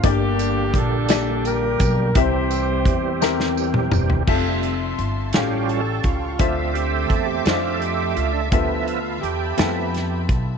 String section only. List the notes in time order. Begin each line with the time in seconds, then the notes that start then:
4.28 E5 A5 C6
5.34 G5 C#6
6.40 E5 C6 D6
8.53 A5 B5